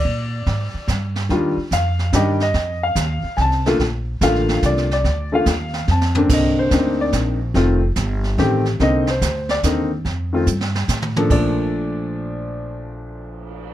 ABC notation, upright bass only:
X:1
M:3/4
L:1/8
Q:"Swing" 1/4=144
K:Bb
V:1 name="Upright bass" clef=bass
B,,2 _A,, z G,,2 | E,, z F,,2 G,,2 | F,,2 E,, z C,,2 | B,,,2 A,,,2 C,,2 |
D,,2 E,,2 F,,2 | C,,2 D,,2 B,,,2 | F,,,2 G,,,2 A,,,2 | C,,2 D,,2 E,,2 |
F,,2 G,,2 A,,2 | B,,,6- | B,,,6 |]